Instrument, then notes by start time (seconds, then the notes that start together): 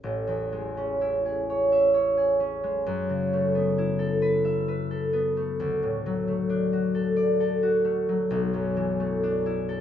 harp
Already playing: A3 C#4 E4 A4
0.04 A1
0.27 E2
0.53 G#3
0.77 C#4
1.01 E4
1.26 G#4
1.50 C#5
1.72 E5
1.94 C#5
2.17 G#4
2.40 C#4
2.64 G#3
2.86 F#2
3.09 C#3
3.33 A3
3.55 B3
3.78 E4
3.99 A4
4.22 B4
4.45 E5
4.68 B4
4.91 A4
5.13 B3
5.37 A3
5.60 D2
5.83 A2
6.06 F#3
6.28 A3
6.50 D4
6.73 F#4
6.95 A4
7.16 D5
7.40 A4
7.63 F#4
7.85 A3
8.09 F#3
8.31 B1
8.54 F#2
8.77 E3
9.00 A3
9.23 D4
9.46 E4
9.69 A4